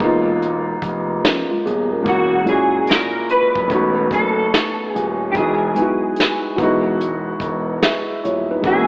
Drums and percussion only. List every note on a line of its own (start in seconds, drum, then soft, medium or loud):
0.00 kick medium
0.00 closed hi-hat medium
0.42 closed hi-hat medium
0.82 kick medium
0.82 closed hi-hat medium
1.25 snare loud
1.25 closed hi-hat medium
1.67 closed hi-hat medium
2.06 kick loud
2.06 closed hi-hat medium
2.47 closed hi-hat medium
2.87 snare loud
2.87 closed hi-hat medium
3.29 closed hi-hat medium
3.56 kick medium
3.70 kick medium
3.70 closed hi-hat medium
4.11 kick medium
4.11 closed hi-hat medium
4.54 snare loud
4.54 closed hi-hat medium
4.96 closed hi-hat medium
5.35 kick loud
5.35 closed hi-hat medium
5.76 closed hi-hat medium
6.16 snare medium
6.16 closed hi-hat medium
6.58 kick medium
6.58 closed hi-hat medium
7.00 closed hi-hat medium
7.40 kick medium
7.40 closed hi-hat medium
7.82 snare loud
7.82 closed hi-hat medium
8.25 closed hi-hat medium
8.64 kick medium
8.64 closed hi-hat medium